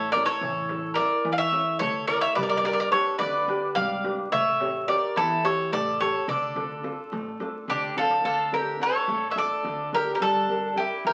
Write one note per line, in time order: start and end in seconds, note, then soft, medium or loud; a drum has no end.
0.00 0.26 A1 medium
0.00 0.41 A3 medium
0.00 0.11 A4 medium
0.00 0.11 C#5 medium
0.12 0.60 E4 soft
0.12 0.60 A4 soft
0.12 0.25 A#4 medium
0.12 0.25 D5 medium
0.12 darbuka tek medium
0.17 0.60 C#5 medium
0.25 0.93 A4 medium
0.25 0.93 C#5 medium
0.41 1.00 A1 medium
0.41 0.97 E3 medium
0.41 darbuka dum medium
0.69 0.97 E4 soft
0.69 1.15 A4 soft
0.69 1.15 C#5 medium
0.69 darbuka tek medium
0.94 1.43 E4 soft
0.94 1.28 A#4 medium
0.94 1.29 D5 medium
0.94 darbuka tek medium
0.98 1.43 E5 medium
1.12 darbuka tek soft
1.24 1.45 E2 medium
1.24 1.80 E3 medium
1.24 darbuka tek medium
1.32 1.38 D5 medium
1.32 1.38 F5 medium
1.38 1.78 C#5 medium
1.38 1.78 E5 medium
1.52 1.97 E4 soft
1.52 1.98 A4 soft
1.52 1.98 C#5 medium
1.52 darbuka tek medium
1.79 2.20 D2 medium
1.79 2.35 A3 medium
1.79 2.07 A4 medium
1.79 2.06 C#5 medium
1.79 darbuka tek medium
1.79 darbuka dum medium
2.07 2.31 E4 soft
2.07 2.31 A4 soft
2.07 2.20 A#4 medium
2.07 2.31 C#5 medium
2.07 2.21 D5 medium
2.07 darbuka tek medium
2.21 2.35 C#5 medium
2.21 2.35 E5 medium
2.35 2.96 G1 medium
2.35 2.91 G3 medium
2.35 2.42 B4 medium
2.35 2.42 D5 medium
2.35 darbuka dum medium
2.42 2.47 A#4 medium
2.42 2.48 D5 medium
2.48 2.55 A#4 medium
2.48 2.56 D5 medium
2.56 2.65 A#4 medium
2.56 2.64 D5 medium
2.64 2.91 D4 soft
2.64 2.92 G4 soft
2.64 2.72 A#4 medium
2.64 2.92 B4 soft
2.64 2.72 D5 medium
2.64 darbuka tek medium
2.73 2.80 A#4 medium
2.73 2.79 D5 medium
2.80 2.89 A#4 medium
2.80 2.88 D5 medium
2.92 3.38 D4 soft
2.92 3.38 G4 soft
2.92 3.18 A4 medium
2.92 3.38 B4 medium
2.92 3.18 C#5 medium
2.92 darbuka tek medium
3.06 darbuka tek soft
3.18 3.40 D2 medium
3.18 3.75 D3 medium
3.18 3.72 B4 medium
3.18 3.72 D5 medium
3.18 darbuka tek medium
3.47 3.93 D4 medium
3.47 3.93 G4 soft
3.47 3.93 B4 soft
3.47 darbuka tek medium
3.63 darbuka tek soft
3.75 4.17 G#1 medium
3.75 4.30 G3 medium
3.75 4.16 D5 medium
3.75 4.15 F5 medium
3.75 darbuka tek medium
3.75 darbuka dum medium
4.04 4.27 D4 medium
4.04 4.27 G4 soft
4.04 4.27 B4 medium
4.04 darbuka tek medium
4.32 4.92 A1 medium
4.32 4.87 A3 medium
4.32 4.85 C#5 medium
4.32 4.88 E5 medium
4.32 darbuka dum medium
4.60 4.87 G4 soft
4.60 4.87 A4 soft
4.60 4.87 C#5 medium
4.60 darbuka tek medium
4.88 5.33 G4 soft
4.88 5.33 A4 soft
4.88 5.15 A#4 medium
4.88 5.34 C#5 medium
4.88 5.17 D5 medium
4.88 darbuka tek medium
5.03 darbuka tek soft
5.16 5.37 E2 loud
5.16 5.71 E3 medium
5.16 5.43 E4 medium
5.16 5.46 A4 medium
5.16 darbuka tek medium
5.44 5.89 G4 soft
5.44 5.89 A4 soft
5.44 5.71 A4 medium
5.44 5.71 C#5 medium
5.44 5.89 C#5 medium
5.44 darbuka tek medium
5.59 darbuka tek soft
5.72 6.12 A1 medium
5.72 6.27 A3 medium
5.72 5.99 A4 medium
5.72 6.00 D5 loud
5.72 darbuka tek medium
5.72 darbuka dum medium
6.00 6.23 G4 soft
6.00 6.23 A4 soft
6.00 6.28 A4 medium
6.00 6.28 C#5 medium
6.00 6.23 C#5 medium
6.00 darbuka tek medium
6.27 6.87 D2 medium
6.27 6.82 D3 medium
6.27 7.65 A4 medium
6.27 7.65 D5 medium
6.27 darbuka dum medium
6.43 darbuka tek soft
6.55 6.82 D4 medium
6.55 6.82 F4 soft
6.55 6.83 A4 medium
6.55 darbuka tek medium
6.83 7.29 D4 soft
6.83 7.29 F4 soft
6.83 7.29 A4 medium
6.83 darbuka tek medium
7.12 7.32 A1 medium
7.12 7.67 A3 medium
7.12 darbuka tek medium
7.26 darbuka tek soft
7.40 7.85 D4 soft
7.40 7.85 F4 soft
7.40 7.85 A4 medium
7.40 darbuka tek medium
7.55 darbuka tek soft
7.68 8.07 D2 medium
7.68 8.23 D3 medium
7.68 7.95 D4 medium
7.68 7.95 G4 medium
7.68 darbuka tek medium
7.68 darbuka dum medium
7.83 darbuka dum medium
7.96 8.19 D4 soft
7.96 8.19 F4 soft
7.96 8.24 F4 medium
7.96 8.19 A4 medium
7.96 8.23 A4 medium
7.96 darbuka tek medium
8.11 darbuka tek medium
8.24 8.83 D2 medium
8.24 8.79 D3 medium
8.24 8.51 F4 medium
8.24 8.51 A4 medium
8.52 8.78 D4 soft
8.52 8.79 F4 soft
8.52 8.80 G4 medium
8.52 8.79 A4 medium
8.52 8.79 A#4 medium
8.79 9.25 D4 soft
8.79 9.25 F4 soft
8.79 9.25 A4 soft
8.79 9.27 A4 medium
8.79 9.27 C#5 medium
9.08 9.47 A1 medium
9.08 9.63 A3 medium
9.30 9.37 C#5 soft
9.30 9.38 E5 medium
9.35 9.81 D4 soft
9.35 9.81 F4 soft
9.35 9.81 A4 soft
9.35 9.89 A4 medium
9.35 9.90 D5 medium
9.64 10.04 D2 medium
9.64 10.19 D3 medium
9.92 10.15 D4 soft
9.92 10.15 F4 soft
9.92 10.13 G4 medium
9.92 10.15 A4 medium
9.92 10.13 A#4 medium
10.14 10.21 G4 soft
10.14 10.22 A#4 medium
10.20 10.80 G1 medium
10.20 10.75 G3 medium
10.20 10.74 D4 medium
10.20 10.79 A4 medium
10.49 10.75 D4 soft
10.49 10.75 G4 soft
10.49 10.75 A#4 medium
10.76 11.13 D4 soft
10.76 11.05 E4 medium
10.76 11.13 G4 soft
10.76 11.03 G4 medium
10.76 11.13 A#4 medium
11.05 11.13 D2 medium
11.05 11.13 D3 medium
11.05 11.13 G4 medium
11.05 11.13 A#4 medium